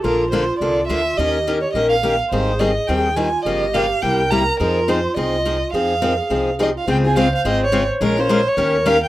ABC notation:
X:1
M:4/4
L:1/8
Q:"Swing" 1/4=211
K:Fm
V:1 name="Violin"
B2 c2 =d2 =e2 | e2 z d e f2 z | c2 e2 g2 a2 | e2 f2 g2 b2 |
B2 c2 e4 | f6 e f | g a f f e d2 z | B c2 d3 f g |]
V:2 name="Clarinet"
F8 | G4- G z3 | A6 F2 | G4 B4 |
F8 | A2 B A3 G F | c8 | d4 B4 |]
V:3 name="Steel-string acoustic guitar"
[=D,F,B,=D=A] z [D,F,B,DA] z [D,F,B,DA] z [D,F,B,DA] z | [E,B,DGB] z [E,B,DGB] z [E,B,DGB] z [E,B,DGB] z | [E,G,CEA] z [E,G,CEA] z [E,G,CEA] z [E,G,CEA] z | [D,F,B,FG] z [D,F,B,FG] z [C,G,B,=EG] z [C,G,B,EG] z |
[F,CEA] z [F,CEA] z [F,CEA] z [F,CEA] z | [F,CEA] z [F,CEA] z [F,CEA] z [F,CEA] z | [D,A,CFA] [CFA] [D,A,CFA] z [D,A,CFA] z [D,A,CFA] z | [F,A,DFB] [DFB] [F,A,DFB] z [E,B,DGB] z [E,B,DGB] z |]
V:4 name="Upright bass" clef=bass
B,,,4 C,,2 =D,,2 | E,,4 B,,,4 | A,,,4 E,,4 | G,,,4 C,,4 |
F,,4 C,,4 | F,,4 C,,4 | D,,4 A,,,4 | B,,,4 E,,4 |]